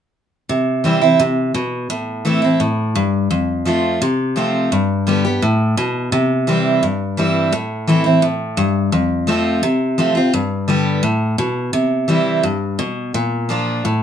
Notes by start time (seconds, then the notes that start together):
0.49 C3
0.84 E3 G3 C4 E4
1.01 C4 E4
1.20 C3
1.54 B2
1.90 A2
2.25 E3 A3 C4 E4
2.42 C4 E4
2.60 A2
2.95 G2
3.31 F2
3.65 F3 A3 C4 F4
4.02 C3
4.36 F3 A3 C4 F4
4.72 G2
5.07 D3 G3 B3 G4
5.25 B3 G4
5.42 A2
5.77 B2
6.12 C3
6.47 E3 G3 C4 E4
6.83 G2
7.17 E3 G3 C4 E4
7.52 A2
7.87 E3 A3 C4 E4
8.04 C4 E4
8.22 A2
8.57 G2
8.92 F2
9.27 F3 A3 C4 F4
9.63 C3
9.98 F3 A3 C4 F4
10.15 C4 F4
10.33 G2
10.68 D3 G3 B3 G4
11.03 A2
11.38 B2
11.73 C3
12.08 E3 G3 C4 E4
12.43 G2
12.79 B2
13.14 A#2
13.49 F3 A#3 D4 F4
13.85 A2